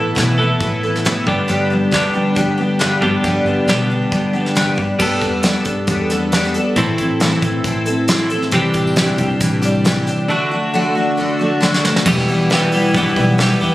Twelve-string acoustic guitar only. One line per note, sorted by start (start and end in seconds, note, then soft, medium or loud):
0.00 0.16 B3 soft
0.00 0.16 E4 soft
0.00 0.17 A4 medium
0.15 0.38 A2 medium
0.15 0.38 E3 medium
0.15 0.39 B3 medium
0.15 0.39 E4 medium
0.15 0.38 A4 medium
0.39 0.61 E4 medium
0.39 0.61 A4 soft
0.43 0.61 B3 soft
0.60 0.82 E3 medium
0.60 0.83 B3 medium
0.60 0.84 E4 medium
0.60 0.82 A4 medium
0.83 1.05 B3 soft
0.83 1.05 E4 soft
0.83 1.05 A4 medium
1.05 1.27 A2 medium
1.05 1.27 E3 medium
1.05 1.28 B3 medium
1.05 1.27 E4 medium
1.05 1.26 A4 medium
1.27 1.47 G3 soft
1.27 1.48 B3 soft
1.27 1.48 D4 medium
1.27 1.48 G4 medium
1.48 1.70 G2 medium
1.48 1.70 D3 medium
1.48 1.70 G3 medium
1.48 1.71 B3 medium
1.48 1.70 D4 medium
1.48 1.69 G4 medium
1.70 1.91 G3 soft
1.70 1.92 B3 soft
1.70 1.92 D4 soft
1.70 1.92 G4 medium
1.91 2.14 G2 medium
1.91 2.14 D3 medium
1.91 2.14 G3 medium
1.91 2.14 B3 medium
1.91 2.13 D4 medium
1.91 2.12 G4 medium
2.13 2.34 G3 soft
2.13 2.34 B3 soft
2.13 2.36 D4 medium
2.13 2.36 G4 medium
2.35 2.58 G3 medium
2.35 2.58 B3 medium
2.35 2.57 D4 medium
2.35 2.56 G4 medium
2.58 2.79 G3 soft
2.58 2.79 B3 soft
2.58 2.80 D4 soft
2.58 2.80 G4 medium
2.79 3.02 G2 medium
2.79 3.02 D3 medium
2.79 3.02 G3 medium
2.79 3.02 B3 medium
2.79 3.01 D4 medium
2.79 3.01 G4 medium
3.02 3.24 G3 soft
3.02 3.24 B3 soft
3.02 3.24 D4 medium
3.02 3.24 G4 medium
3.23 3.46 G2 medium
3.23 3.46 D3 medium
3.23 3.47 G3 medium
3.23 3.47 B3 medium
3.23 3.46 D4 medium
3.23 3.45 G4 medium
3.46 3.67 G3 soft
3.46 3.67 B3 soft
3.46 3.68 D4 soft
3.46 3.68 G4 soft
3.67 3.90 G2 medium
3.67 3.90 D3 medium
3.67 3.90 G3 medium
3.67 3.90 B3 medium
3.67 3.89 D4 medium
3.67 3.89 G4 medium
3.90 4.11 G3 soft
3.90 4.12 B3 soft
3.90 4.13 D4 soft
3.90 4.12 G4 soft
4.12 4.34 G3 medium
4.12 4.35 B3 medium
4.12 4.33 D4 medium
4.12 4.32 G4 medium
4.33 4.55 G3 soft
4.33 4.56 B3 soft
4.33 4.56 D4 soft
4.33 4.56 G4 medium
4.55 4.78 G2 medium
4.55 4.78 D3 medium
4.55 4.78 G3 medium
4.55 4.76 B3 medium
4.55 4.76 D4 medium
4.55 4.74 G4 medium
4.76 4.98 G3 soft
4.76 4.99 B3 soft
4.76 5.00 D4 soft
4.76 4.99 G4 medium
5.00 5.22 G3 medium
5.00 5.22 B3 medium
5.00 5.21 D4 medium
5.00 5.20 A4 medium
5.21 5.43 B3 soft
5.21 5.44 D4 medium
5.21 5.44 A4 medium
5.44 5.66 G3 medium
5.44 5.66 B3 medium
5.44 5.64 D4 medium
5.44 5.63 A4 medium
5.64 5.87 B3 soft
5.64 5.88 D4 soft
5.64 5.87 A4 soft
5.87 6.10 G3 medium
5.87 6.10 B3 medium
5.87 6.11 D4 medium
5.87 6.09 A4 medium
6.10 6.31 B3 soft
6.10 6.33 D4 soft
6.10 6.32 A4 medium
6.32 6.54 G3 medium
6.32 6.55 B3 medium
6.32 6.55 D4 medium
6.32 6.53 A4 medium
6.54 6.77 B3 soft
6.54 6.77 D4 medium
6.54 6.76 A4 medium
6.77 6.99 A2 medium
6.77 6.99 E3 medium
6.77 6.99 C4 medium
6.77 6.99 E4 medium
6.77 6.97 A4 medium
6.99 7.21 C4 soft
6.99 7.21 E4 medium
6.99 7.21 A4 medium
7.20 7.42 A2 medium
7.20 7.43 E3 medium
7.20 7.43 C4 medium
7.20 7.42 E4 medium
7.20 7.41 A4 loud
7.42 7.65 C4 soft
7.42 7.65 E4 soft
7.42 7.64 A4 medium
7.65 7.87 E3 medium
7.65 7.87 C4 medium
7.65 7.86 E4 medium
7.65 7.84 A4 medium
7.85 8.08 C4 soft
7.85 8.08 E4 medium
7.85 8.08 A4 medium
8.08 8.30 A2 medium
8.08 8.30 E3 medium
8.08 8.31 C4 medium
8.08 8.31 E4 medium
8.08 8.29 A4 loud
8.31 8.53 C4 soft
8.31 8.53 E4 soft
8.31 8.53 A4 medium
8.52 8.75 C3 medium
8.52 8.75 E3 medium
8.52 8.75 G3 medium
8.52 8.75 D4 medium
8.52 8.74 G4 medium
8.75 8.97 G3 soft
8.75 8.97 D4 soft
8.75 8.97 G4 medium
8.97 9.19 C3 medium
8.97 9.20 E3 medium
8.97 9.19 G3 medium
8.97 9.20 D4 medium
8.97 9.19 G4 medium
9.20 9.41 G3 soft
9.20 9.42 D4 medium
9.20 9.42 G4 medium
9.41 9.63 E3 medium
9.41 9.63 G3 medium
9.41 9.63 D4 medium
9.41 9.60 G4 medium
9.62 9.84 G3 medium
9.62 9.84 D4 soft
9.62 9.84 G4 medium
9.84 10.07 C3 medium
9.84 10.07 E3 medium
9.84 10.07 G3 medium
9.84 10.07 D4 medium
9.84 10.05 G4 loud
10.06 10.29 G3 soft
10.06 10.29 D4 medium
10.06 10.28 G4 medium
10.28 10.51 D3 medium
10.28 10.51 A3 medium
10.28 10.52 D4 medium
10.28 10.50 F#4 medium
10.51 10.73 A3 soft
10.51 10.73 D4 medium
10.51 10.73 F#4 medium
10.74 10.95 D3 medium
10.74 10.96 A3 medium
10.74 10.96 D4 medium
10.74 10.94 F#4 loud
10.95 11.17 A3 soft
10.95 11.18 D4 medium
10.95 11.17 F#4 medium
11.17 11.39 D3 medium
11.17 11.40 A3 medium
11.17 11.40 D4 medium
11.17 11.38 F#4 medium
11.39 11.61 A3 medium
11.39 11.61 D4 medium
11.39 11.61 F#4 medium
11.61 11.83 D3 medium
11.61 11.84 A3 medium
11.61 11.84 D4 medium
11.61 11.83 F#4 loud
11.84 12.07 A3 medium
11.84 12.07 D4 medium
11.84 12.06 F#4 medium
12.07 12.28 E2 medium
12.07 12.28 B2 medium
12.07 12.29 E3 medium
12.07 12.29 G3 medium
12.07 12.28 B3 medium
12.07 12.27 E4 medium
12.28 12.49 E3 soft
12.28 12.51 G3 medium
12.28 12.51 B3 soft
12.28 12.50 E4 medium
12.51 12.72 E3 medium
12.51 12.73 G3 medium
12.51 12.73 B3 medium
12.51 12.72 E4 medium
12.74 12.96 E3 soft
12.74 12.96 G3 soft
12.74 12.95 B3 medium
12.74 12.95 E4 medium
12.96 13.17 E2 medium
12.96 13.17 B2 medium
12.96 13.18 E3 medium
12.96 13.18 G3 medium
12.96 13.17 B3 loud
12.96 13.16 E4 medium
13.17 13.37 E3 medium
13.17 13.39 G3 medium
13.17 13.39 B3 medium
13.17 13.38 E4 medium
13.38 13.60 E3 medium
13.38 13.61 G3 medium
13.38 13.61 B3 medium
13.38 13.62 E4 medium
13.63 13.75 E3 soft
13.63 13.75 G3 medium
13.63 13.75 B3 medium
13.63 13.75 E4 medium